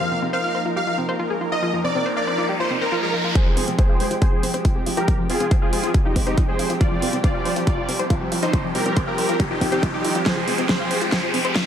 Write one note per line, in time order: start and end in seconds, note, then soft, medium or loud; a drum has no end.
0.00 0.09 F3 medium
0.00 0.18 F5 loud
0.00 riser medium
0.12 0.27 F3 medium
0.12 0.27 A#3 medium
0.12 0.17 C4 medium
0.12 0.27 D#4 medium
0.12 0.27 A#4 medium
0.22 0.30 C4 medium
0.33 0.48 F3 medium
0.33 0.48 A#3 medium
0.33 0.48 D#4 medium
0.33 0.48 A#4 medium
0.33 0.38 C5 loud
0.33 0.61 F5 medium
0.44 0.49 F5 medium
0.55 0.70 F3 medium
0.55 0.70 A#3 medium
0.55 0.70 D#4 medium
0.55 0.70 A#4 medium
0.55 0.63 C5 medium
0.66 0.69 F4 medium
0.76 0.80 G4 medium
0.76 0.97 F5 medium
0.87 0.95 F3 medium
0.87 0.95 A#3 medium
0.87 0.95 D#4 medium
0.87 0.95 F4 medium
0.87 0.95 A#4 medium
0.98 1.06 F3 medium
0.98 1.06 A#3 medium
0.98 1.03 C4 medium
0.98 1.06 D#4 medium
0.98 1.06 A#4 medium
1.09 1.16 F3 medium
1.09 1.16 A#3 medium
1.09 1.16 D#4 medium
1.09 1.16 A#4 medium
1.09 1.14 C5 loud
1.20 1.35 F3 medium
1.20 1.35 A#3 medium
1.20 1.35 D#4 medium
1.20 1.25 F4 medium
1.20 1.35 A#4 medium
1.30 1.33 G#4 medium
1.41 1.49 F3 medium
1.41 1.49 A#3 medium
1.41 1.49 D#4 medium
1.41 1.44 F4 medium
1.41 1.49 A#4 medium
1.52 1.60 F3 medium
1.52 1.60 A#3 medium
1.52 1.60 D#4 medium
1.52 1.55 F4 medium
1.52 1.60 A#4 medium
1.52 1.73 D#5 medium
1.63 1.78 F3 medium
1.63 1.78 A#3 medium
1.63 1.78 D#4 medium
1.63 1.68 F4 medium
1.63 1.78 A#4 medium
1.73 1.81 F3 medium
1.84 1.99 F3 medium
1.84 1.99 A#3 medium
1.84 1.90 C4 medium
1.84 1.99 D#4 medium
1.84 1.99 A#4 medium
1.84 2.05 D5 loud
1.95 2.03 C4 medium
2.06 2.21 F3 medium
2.06 2.21 A#3 medium
2.06 2.21 D#4 medium
2.06 2.21 A#4 medium
2.06 2.11 C5 loud
2.17 2.45 D5 medium
2.17 2.22 F5 medium
2.27 2.43 F3 medium
2.27 2.43 A#3 medium
2.27 2.43 D#4 medium
2.27 2.43 A#4 medium
2.27 2.35 C5 medium
2.38 2.41 F4 medium
2.49 2.52 G4 medium
2.60 2.67 F3 medium
2.60 2.67 A#3 medium
2.60 2.68 D#4 medium
2.60 2.68 F4 medium
2.60 2.67 A#4 medium
2.60 2.74 C5 medium
2.71 2.78 F3 medium
2.71 2.78 A#3 medium
2.71 2.76 C4 medium
2.71 2.78 D#4 medium
2.71 2.78 A#4 medium
2.81 2.89 F3 medium
2.81 2.89 A#3 medium
2.81 2.89 D#4 medium
2.81 2.95 A#4 medium
2.81 2.89 A#4 medium
2.81 2.87 C5 medium
2.92 3.07 F3 medium
2.92 3.07 A#3 medium
2.92 3.07 D#4 medium
2.92 2.97 F4 loud
2.92 3.07 A#4 medium
3.03 3.06 G#4 medium
3.03 3.24 A#4 medium
3.14 3.21 F3 medium
3.14 3.21 A#3 medium
3.14 3.21 D#4 medium
3.14 3.17 F4 medium
3.14 3.21 A#4 medium
3.25 3.32 F3 medium
3.25 3.32 A#3 medium
3.25 3.32 D#4 medium
3.25 3.28 F4 medium
3.25 3.32 A#4 medium
3.35 3.50 F3 medium
3.35 3.50 G#3 medium
3.35 3.50 C4 medium
3.35 3.41 F4 medium
3.35 3.51 G4 medium
3.35 3.63 G#4 medium
3.35 3.63 C5 loud
3.35 kick loud
3.35 closed hi-hat medium
3.35 riser medium
3.46 3.54 F3 medium
3.57 3.64 F1 medium
3.57 3.72 F3 medium
3.57 3.72 G#3 medium
3.57 3.62 C4 medium
3.57 3.72 C4 medium
3.57 3.72 G4 medium
3.57 open hi-hat loud
3.68 3.75 F1 medium
3.68 3.76 C4 medium
3.68 closed hi-hat medium
3.78 3.94 F3 medium
3.78 3.94 G#3 medium
3.78 3.94 C4 medium
3.78 3.94 G4 medium
3.78 4.06 G#4 medium
3.78 3.84 C5 loud
3.78 4.06 C5 medium
3.78 kick loud
3.78 closed hi-hat medium
3.89 3.95 F5 medium
4.00 4.07 D#1 medium
4.00 4.15 F3 medium
4.00 4.15 G#3 medium
4.00 4.15 C4 medium
4.00 4.15 G4 medium
4.00 4.08 C5 medium
4.00 open hi-hat medium
4.11 4.18 F1 medium
4.11 4.14 F4 medium
4.11 closed hi-hat medium
4.22 4.25 G4 medium
4.22 4.43 G#4 medium
4.22 4.43 C5 loud
4.22 kick loud
4.22 closed hi-hat medium
4.32 4.40 F3 medium
4.32 4.40 G#3 medium
4.32 4.40 C4 medium
4.32 4.40 F4 medium
4.32 4.40 G4 medium
4.43 4.50 F1 medium
4.43 4.51 F3 medium
4.43 4.51 G#3 medium
4.43 4.49 C4 medium
4.43 4.51 C4 medium
4.43 4.51 G4 medium
4.43 open hi-hat loud
4.54 4.61 F1 medium
4.54 4.62 F3 medium
4.54 4.62 G#3 medium
4.54 4.62 C4 medium
4.54 4.62 G4 medium
4.54 4.59 C5 loud
4.54 closed hi-hat medium
4.65 4.80 F3 medium
4.65 4.80 G#3 medium
4.65 4.80 C4 medium
4.65 4.70 F4 loud
4.65 4.80 G4 medium
4.65 kick loud
4.65 closed hi-hat medium
4.76 4.79 G#4 medium
4.86 4.94 F1 medium
4.86 4.94 F3 medium
4.86 4.94 G#3 medium
4.86 4.94 C4 medium
4.86 4.90 F4 medium
4.86 4.94 G4 medium
4.86 open hi-hat medium
4.97 5.04 F1 medium
4.97 5.05 F3 medium
4.97 5.05 G#3 medium
4.97 5.05 C4 medium
4.97 5.00 F4 medium
4.97 5.18 G4 medium
4.97 5.05 G4 medium
4.97 5.18 A#4 medium
4.97 closed hi-hat medium
5.08 5.23 F3 medium
5.08 5.23 G#3 medium
5.08 5.23 C4 medium
5.08 5.13 F4 medium
5.08 5.23 G4 medium
5.08 kick loud
5.08 closed hi-hat medium
5.19 5.27 F3 medium
5.30 5.37 F1 medium
5.30 5.45 F3 medium
5.30 5.45 G#3 medium
5.30 5.35 C4 medium
5.30 5.45 C4 medium
5.30 5.51 F4 medium
5.30 5.45 G4 medium
5.30 5.51 G#4 medium
5.30 open hi-hat loud
5.40 5.48 F1 medium
5.40 5.48 C4 medium
5.40 closed hi-hat medium
5.51 5.66 F3 loud
5.51 5.66 G#3 medium
5.51 5.66 C4 medium
5.51 5.66 G4 medium
5.51 5.56 C5 loud
5.51 kick loud
5.51 closed hi-hat medium
5.62 5.90 F4 medium
5.62 5.90 G#4 loud
5.62 5.67 F5 medium
5.73 5.80 D#1 medium
5.73 5.88 F3 medium
5.73 5.88 G#3 medium
5.73 5.88 C4 medium
5.73 5.88 G4 medium
5.73 5.81 C5 medium
5.73 open hi-hat medium
5.84 5.91 F1 medium
5.84 5.87 F4 medium
5.84 closed hi-hat medium
5.94 5.97 G4 medium
5.94 kick loud
5.94 closed hi-hat medium
6.05 6.13 F3 medium
6.05 6.13 G#3 medium
6.05 6.13 C4 medium
6.05 6.19 D#4 medium
6.05 6.13 F4 medium
6.05 6.19 G4 medium
6.05 6.13 G4 medium
6.16 6.23 F1 medium
6.16 6.24 F3 medium
6.16 6.24 G#3 medium
6.16 6.21 C4 medium
6.16 6.24 C4 medium
6.16 6.24 G4 medium
6.16 kick medium
6.16 open hi-hat loud
6.27 6.34 F1 medium
6.27 6.34 F3 medium
6.27 6.34 G#3 medium
6.27 6.34 C4 medium
6.27 6.41 D#4 medium
6.27 6.41 G4 medium
6.27 6.34 G4 medium
6.27 6.32 C5 loud
6.27 closed hi-hat medium
6.37 6.53 F3 medium
6.37 6.53 G#3 medium
6.37 6.53 C4 medium
6.37 6.43 F4 loud
6.37 6.53 G4 medium
6.37 kick loud
6.37 closed hi-hat medium
6.48 6.51 G#4 medium
6.48 6.69 G#4 medium
6.48 6.69 C5 loud
6.59 6.66 F1 medium
6.59 6.67 F3 medium
6.59 6.67 G#3 medium
6.59 6.67 C4 medium
6.59 6.62 F4 medium
6.59 6.67 G4 medium
6.59 open hi-hat medium
6.70 6.77 F1 medium
6.70 6.77 F3 medium
6.70 6.77 G#3 medium
6.70 6.77 C4 medium
6.70 6.73 F4 medium
6.70 6.77 G4 medium
6.70 closed hi-hat medium
6.81 6.96 F3 medium
6.81 6.96 G3 medium
6.81 6.96 C4 medium
6.81 6.86 F4 medium
6.81 7.09 F4 medium
6.81 6.96 G4 medium
6.81 7.09 D5 loud
6.81 kick loud
6.81 closed hi-hat medium
6.91 6.99 F3 medium
7.02 7.09 C2 medium
7.02 7.17 F3 medium
7.02 7.17 G3 medium
7.02 7.17 C4 medium
7.02 7.08 C4 medium
7.02 7.17 G4 medium
7.02 open hi-hat loud
7.13 7.20 C2 medium
7.13 7.21 C4 medium
7.13 closed hi-hat medium
7.24 7.39 F3 loud
7.24 7.39 G3 medium
7.24 7.39 C4 medium
7.24 7.52 F4 medium
7.24 7.39 G4 medium
7.24 7.29 C5 loud
7.24 7.52 D5 loud
7.24 kick loud
7.24 closed hi-hat medium
7.35 7.40 F5 medium
7.45 7.53 A#1 medium
7.45 7.60 F3 medium
7.45 7.60 G3 medium
7.45 7.60 C4 medium
7.45 7.60 G4 medium
7.45 7.53 C5 medium
7.45 open hi-hat medium
7.56 7.63 C2 medium
7.56 7.59 F4 medium
7.56 closed hi-hat medium
7.67 7.88 F4 medium
7.67 7.70 G4 medium
7.67 7.88 D5 loud
7.67 kick loud
7.67 closed hi-hat medium
7.78 7.85 F3 medium
7.78 7.85 G3 medium
7.78 7.85 C4 medium
7.78 7.86 F4 medium
7.78 7.85 G4 medium
7.88 7.96 C2 medium
7.88 7.96 F3 medium
7.88 7.96 G3 medium
7.88 7.96 C4 medium
7.88 7.94 C4 medium
7.88 7.96 G4 medium
7.88 open hi-hat loud
7.99 8.07 C2 medium
7.99 8.07 F3 medium
7.99 8.07 G3 medium
7.99 8.07 C4 medium
7.99 8.07 G4 medium
7.99 8.05 C5 loud
7.99 closed hi-hat medium
8.10 8.25 F3 medium
8.10 8.25 G3 medium
8.10 8.25 C4 medium
8.10 8.15 F4 loud
8.10 8.25 G4 medium
8.10 kick loud
8.10 closed hi-hat medium
8.21 8.24 G4 medium
8.32 8.39 C2 medium
8.32 8.39 F3 medium
8.32 8.39 G3 medium
8.32 8.39 C4 medium
8.32 8.35 F4 medium
8.32 8.39 G4 medium
8.32 open hi-hat loud
8.43 8.50 C2 medium
8.43 8.50 F3 medium
8.43 8.50 G3 medium
8.43 8.50 C4 medium
8.43 8.64 D#4 medium
8.43 8.46 F4 medium
8.43 8.50 G4 medium
8.43 8.64 C5 medium
8.43 closed hi-hat medium
8.53 8.68 F3 medium
8.53 8.68 G3 medium
8.53 8.68 C4 medium
8.53 8.59 F4 medium
8.53 8.68 G4 medium
8.53 kick loud
8.53 closed hi-hat medium
8.64 8.72 F3 medium
8.75 8.82 C2 loud
8.75 8.90 F3 medium
8.75 8.90 G3 medium
8.75 8.80 C4 medium
8.75 8.90 C4 medium
8.75 8.90 G4 medium
8.75 8.96 G4 medium
8.75 8.96 A#4 medium
8.75 open hi-hat loud
8.86 8.93 C2 medium
8.86 8.94 C4 medium
8.86 closed hi-hat medium
8.96 9.12 F3 loud
8.96 9.12 G3 medium
8.96 9.12 C4 medium
8.96 9.12 G4 medium
8.96 9.02 C5 loud
8.96 kick loud
8.96 closed hi-hat medium
9.07 9.35 G4 medium
9.07 9.35 A#4 loud
9.07 9.13 F5 medium
9.18 9.25 A#1 medium
9.18 9.33 F3 medium
9.18 9.33 G3 medium
9.18 9.33 C4 medium
9.18 9.33 G4 medium
9.18 9.26 C5 medium
9.18 open hi-hat loud
9.29 9.36 C2 medium
9.29 9.32 F4 medium
9.29 closed hi-hat medium
9.40 9.43 G4 medium
9.40 kick loud
9.40 closed hi-hat medium
9.50 9.58 F3 medium
9.50 9.58 G3 medium
9.50 9.58 C4 medium
9.50 9.64 D#4 medium
9.50 9.58 F4 medium
9.50 9.64 G4 medium
9.50 9.58 G4 medium
9.61 9.68 C2 medium
9.61 9.69 F3 medium
9.61 9.69 G3 medium
9.61 9.69 C4 medium
9.61 9.67 C4 medium
9.61 9.69 G4 medium
9.61 kick medium
9.61 open hi-hat loud
9.72 9.79 C2 medium
9.72 9.80 F3 medium
9.72 9.80 G3 medium
9.72 9.80 C4 medium
9.72 9.86 D#4 medium
9.72 9.86 G4 medium
9.72 9.80 G4 medium
9.72 9.77 C5 loud
9.72 closed hi-hat medium
9.83 9.98 F3 medium
9.83 9.98 G3 medium
9.83 9.98 C4 medium
9.83 9.88 F4 loud
9.83 9.98 G4 medium
9.83 kick loud
9.83 closed hi-hat medium
9.94 10.15 D#4 medium
9.94 10.15 G4 loud
9.94 9.97 G4 medium
10.04 10.12 C2 medium
10.04 10.12 F3 medium
10.04 10.12 G3 medium
10.04 10.12 C4 medium
10.04 10.08 F4 medium
10.04 10.12 G4 medium
10.04 open hi-hat medium
10.15 10.22 C2 medium
10.15 10.23 F3 medium
10.15 10.23 G3 medium
10.15 10.23 C4 medium
10.15 10.18 F4 medium
10.15 10.23 G4 medium
10.15 closed hi-hat medium
10.26 10.41 F3 medium
10.26 10.41 G#3 medium
10.26 10.41 C4 medium
10.26 10.31 F4 medium
10.26 10.41 G4 medium
10.26 10.54 G#4 medium
10.26 10.54 C5 loud
10.26 kick loud
10.26 snare soft
10.26 closed hi-hat medium
10.37 10.45 F3 medium
10.47 10.55 F1 loud
10.47 10.63 F3 medium
10.47 10.63 G#3 medium
10.47 10.63 C4 medium
10.47 10.53 C4 medium
10.47 10.63 G4 medium
10.47 open hi-hat loud
10.58 10.66 F1 medium
10.58 10.66 C4 medium
10.58 closed hi-hat medium
10.69 10.84 F3 loud
10.69 10.84 G#3 medium
10.69 10.84 C4 medium
10.69 10.84 G4 medium
10.69 10.97 G#4 medium
10.69 10.97 C5 loud
10.69 10.74 C5 loud
10.69 kick loud
10.69 snare medium
10.69 closed hi-hat medium
10.80 10.85 F5 medium
10.91 10.98 D#1 medium
10.91 11.06 F3 medium
10.91 11.06 G#3 medium
10.91 11.06 C4 medium
10.91 11.06 G4 medium
10.91 10.99 C5 medium
10.91 open hi-hat medium
11.02 11.09 F1 medium
11.02 11.05 F4 medium
11.02 closed hi-hat medium
11.12 11.15 G4 medium
11.12 11.33 G#4 medium
11.12 11.33 C5 loud
11.12 kick loud
11.12 snare medium
11.12 closed hi-hat medium
11.23 11.31 F3 medium
11.23 11.31 G#3 medium
11.23 11.31 C4 medium
11.23 11.31 F4 medium
11.23 11.31 G4 medium
11.34 11.41 F1 medium
11.34 11.42 F3 medium
11.34 11.42 G#3 medium
11.34 11.39 C4 medium
11.34 11.42 C4 medium
11.34 11.42 G4 medium
11.34 open hi-hat loud
11.45 11.52 F1 medium
11.45 11.52 F3 medium
11.45 11.52 G#3 medium
11.45 11.52 C4 medium
11.45 11.52 G4 medium
11.45 11.50 C5 loud
11.45 closed hi-hat medium
11.55 11.66 F3 medium
11.55 11.66 G#3 medium
11.55 11.66 C4 medium
11.55 11.61 F4 loud
11.55 11.66 G4 medium
11.55 kick loud
11.55 snare medium
11.55 closed hi-hat medium